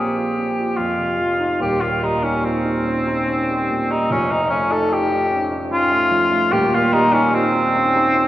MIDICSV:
0, 0, Header, 1, 3, 480
1, 0, Start_track
1, 0, Tempo, 826446
1, 940, Time_signature, 3, 2, 24, 8
1, 2383, Tempo, 808625
1, 4861, End_track
2, 0, Start_track
2, 0, Title_t, "Cor anglais"
2, 0, Program_c, 0, 69
2, 0, Note_on_c, 0, 67, 76
2, 446, Note_on_c, 0, 65, 90
2, 455, Note_off_c, 0, 67, 0
2, 932, Note_off_c, 0, 65, 0
2, 937, Note_on_c, 0, 67, 94
2, 1052, Note_on_c, 0, 65, 81
2, 1060, Note_off_c, 0, 67, 0
2, 1182, Note_on_c, 0, 63, 78
2, 1191, Note_off_c, 0, 65, 0
2, 1295, Note_on_c, 0, 61, 78
2, 1304, Note_off_c, 0, 63, 0
2, 1418, Note_on_c, 0, 60, 88
2, 1427, Note_off_c, 0, 61, 0
2, 2269, Note_on_c, 0, 63, 82
2, 2278, Note_off_c, 0, 60, 0
2, 2385, Note_off_c, 0, 63, 0
2, 2388, Note_on_c, 0, 61, 99
2, 2504, Note_on_c, 0, 63, 87
2, 2513, Note_off_c, 0, 61, 0
2, 2614, Note_off_c, 0, 63, 0
2, 2618, Note_on_c, 0, 61, 92
2, 2748, Note_on_c, 0, 69, 91
2, 2757, Note_off_c, 0, 61, 0
2, 2873, Note_on_c, 0, 67, 94
2, 2882, Note_off_c, 0, 69, 0
2, 3185, Note_off_c, 0, 67, 0
2, 3347, Note_on_c, 0, 65, 113
2, 3818, Note_on_c, 0, 67, 114
2, 3826, Note_off_c, 0, 65, 0
2, 3951, Note_on_c, 0, 65, 94
2, 3960, Note_off_c, 0, 67, 0
2, 4059, Note_on_c, 0, 63, 108
2, 4068, Note_off_c, 0, 65, 0
2, 4180, Note_on_c, 0, 61, 94
2, 4189, Note_off_c, 0, 63, 0
2, 4305, Note_on_c, 0, 60, 113
2, 4314, Note_off_c, 0, 61, 0
2, 4861, Note_off_c, 0, 60, 0
2, 4861, End_track
3, 0, Start_track
3, 0, Title_t, "Grand piano"
3, 0, Program_c, 1, 0
3, 0, Control_c, 1, 64, 127
3, 0, Note_on_c, 1, 34, 59
3, 0, Note_on_c, 1, 46, 57
3, 0, Note_on_c, 1, 53, 42
3, 0, Note_on_c, 1, 58, 51
3, 0, Note_on_c, 1, 60, 52
3, 0, Note_on_c, 1, 65, 46
3, 99, Note_off_c, 1, 65, 0
3, 99, Note_on_c, 1, 65, 46
3, 172, Note_off_c, 1, 60, 0
3, 219, Note_on_c, 1, 60, 47
3, 293, Note_off_c, 1, 65, 0
3, 342, Note_on_c, 1, 65, 46
3, 413, Note_off_c, 1, 60, 0
3, 436, Note_off_c, 1, 34, 0
3, 438, Note_off_c, 1, 46, 0
3, 458, Note_on_c, 1, 41, 62
3, 462, Note_off_c, 1, 65, 0
3, 473, Control_c, 1, 64, 0
3, 476, Note_off_c, 1, 58, 0
3, 480, Note_off_c, 1, 53, 0
3, 572, Control_c, 1, 64, 127
3, 575, Note_on_c, 1, 48, 43
3, 694, Note_on_c, 1, 53, 49
3, 770, Note_off_c, 1, 48, 0
3, 812, Note_on_c, 1, 63, 54
3, 889, Note_off_c, 1, 53, 0
3, 924, Note_off_c, 1, 41, 0
3, 929, Note_on_c, 1, 27, 62
3, 934, Note_on_c, 1, 39, 66
3, 935, Note_off_c, 1, 63, 0
3, 952, Control_c, 1, 64, 0
3, 1048, Control_c, 1, 64, 127
3, 1050, Note_on_c, 1, 46, 50
3, 1173, Note_on_c, 1, 55, 52
3, 1246, Note_off_c, 1, 46, 0
3, 1299, Note_on_c, 1, 63, 49
3, 1368, Note_off_c, 1, 55, 0
3, 1422, Note_on_c, 1, 65, 53
3, 1493, Note_off_c, 1, 63, 0
3, 1540, Note_on_c, 1, 63, 54
3, 1615, Note_off_c, 1, 65, 0
3, 1657, Note_on_c, 1, 61, 52
3, 1735, Note_off_c, 1, 63, 0
3, 1781, Note_on_c, 1, 63, 57
3, 1854, Note_off_c, 1, 61, 0
3, 1903, Note_on_c, 1, 61, 59
3, 1976, Note_off_c, 1, 63, 0
3, 2033, Note_on_c, 1, 55, 49
3, 2097, Note_off_c, 1, 61, 0
3, 2152, Note_on_c, 1, 46, 52
3, 2221, Note_off_c, 1, 55, 0
3, 2268, Note_on_c, 1, 55, 56
3, 2340, Note_off_c, 1, 46, 0
3, 2355, Note_off_c, 1, 27, 0
3, 2358, Note_off_c, 1, 39, 0
3, 2382, Note_on_c, 1, 29, 66
3, 2386, Note_off_c, 1, 55, 0
3, 2389, Note_on_c, 1, 41, 69
3, 2394, Control_c, 1, 64, 0
3, 2493, Control_c, 1, 64, 127
3, 2505, Note_on_c, 1, 53, 53
3, 2620, Note_on_c, 1, 57, 58
3, 2698, Note_off_c, 1, 53, 0
3, 2740, Note_on_c, 1, 63, 56
3, 2815, Note_off_c, 1, 57, 0
3, 2858, Note_on_c, 1, 65, 59
3, 2934, Note_off_c, 1, 63, 0
3, 2983, Note_on_c, 1, 63, 58
3, 3052, Note_off_c, 1, 65, 0
3, 3101, Note_on_c, 1, 61, 55
3, 3174, Note_off_c, 1, 63, 0
3, 3219, Note_on_c, 1, 63, 60
3, 3292, Note_off_c, 1, 61, 0
3, 3337, Note_on_c, 1, 61, 61
3, 3411, Note_off_c, 1, 63, 0
3, 3453, Note_on_c, 1, 57, 58
3, 3530, Note_off_c, 1, 61, 0
3, 3574, Note_on_c, 1, 53, 60
3, 3649, Note_off_c, 1, 57, 0
3, 3695, Note_on_c, 1, 57, 59
3, 3771, Note_off_c, 1, 53, 0
3, 3798, Note_off_c, 1, 29, 0
3, 3801, Note_off_c, 1, 41, 0
3, 3809, Note_on_c, 1, 27, 69
3, 3818, Note_on_c, 1, 39, 71
3, 3820, Note_off_c, 1, 57, 0
3, 3833, Control_c, 1, 64, 0
3, 3940, Note_on_c, 1, 46, 56
3, 3943, Control_c, 1, 64, 127
3, 4063, Note_on_c, 1, 55, 66
3, 4139, Note_off_c, 1, 46, 0
3, 4183, Note_on_c, 1, 63, 60
3, 4261, Note_off_c, 1, 55, 0
3, 4309, Note_on_c, 1, 65, 65
3, 4379, Note_off_c, 1, 63, 0
3, 4429, Note_on_c, 1, 63, 61
3, 4501, Note_off_c, 1, 65, 0
3, 4553, Note_on_c, 1, 61, 61
3, 4620, Note_off_c, 1, 63, 0
3, 4671, Note_on_c, 1, 63, 62
3, 4740, Note_off_c, 1, 61, 0
3, 4789, Note_on_c, 1, 61, 71
3, 4858, Note_off_c, 1, 63, 0
3, 4861, Note_off_c, 1, 27, 0
3, 4861, Note_off_c, 1, 39, 0
3, 4861, Note_off_c, 1, 61, 0
3, 4861, End_track
0, 0, End_of_file